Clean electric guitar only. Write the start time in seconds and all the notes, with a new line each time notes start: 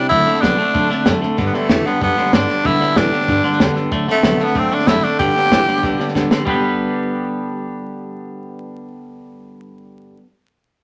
0.10 D3 A3
0.27 D3 A3
0.42 D3 B3
0.58 D3 A3
0.74 D3 A3
0.90 D3 A3
1.06 D3 A3
1.22 D3 A3
1.37 G2 D3
1.54 G2 D3
1.69 G2 E3
1.85 G2 D3
2.01 G2 D3
2.17 G2 D3
2.33 G2 D3
2.48 G2 D3
2.64 G2 D3
2.80 G2 D3
2.96 G2 E3
3.12 G2 D3
3.29 G2 D3
3.44 G2 D3
3.60 G2 D3
3.76 G2 D3
3.91 D3 A3
4.08 D3 A3
4.24 D3 B3
4.40 D3 A3
4.55 D3 A3
4.71 D3 A3
4.87 D3 A3
5.03 D3 A3
5.20 G2 D3
5.36 G2 D3
5.51 G2 E3
5.68 G2 D3
5.84 G2 D3
6.00 G2 D3
6.15 G2 D3
6.31 G2 D3
6.45 G3 B3 D4 G4
6.49 B4